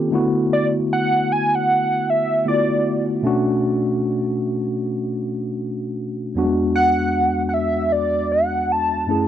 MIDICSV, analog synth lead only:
0, 0, Header, 1, 2, 480
1, 0, Start_track
1, 0, Tempo, 779221
1, 69, Time_signature, 4, 2, 24, 8
1, 5716, End_track
2, 0, Start_track
2, 0, Title_t, "Analog synth lead"
2, 0, Program_c, 0, 81
2, 327, Note_on_c, 0, 74, 76
2, 413, Note_off_c, 0, 74, 0
2, 572, Note_on_c, 0, 78, 98
2, 814, Note_on_c, 0, 80, 95
2, 823, Note_off_c, 0, 78, 0
2, 955, Note_on_c, 0, 78, 93
2, 964, Note_off_c, 0, 80, 0
2, 1292, Note_on_c, 0, 76, 89
2, 1301, Note_off_c, 0, 78, 0
2, 1521, Note_off_c, 0, 76, 0
2, 1528, Note_on_c, 0, 74, 75
2, 1878, Note_off_c, 0, 74, 0
2, 4161, Note_on_c, 0, 78, 96
2, 4576, Note_off_c, 0, 78, 0
2, 4613, Note_on_c, 0, 78, 65
2, 4642, Note_on_c, 0, 76, 83
2, 4652, Note_off_c, 0, 78, 0
2, 4880, Note_on_c, 0, 74, 93
2, 4889, Note_off_c, 0, 76, 0
2, 5123, Note_on_c, 0, 78, 94
2, 5132, Note_off_c, 0, 74, 0
2, 5371, Note_on_c, 0, 81, 98
2, 5380, Note_off_c, 0, 78, 0
2, 5716, Note_off_c, 0, 81, 0
2, 5716, End_track
0, 0, End_of_file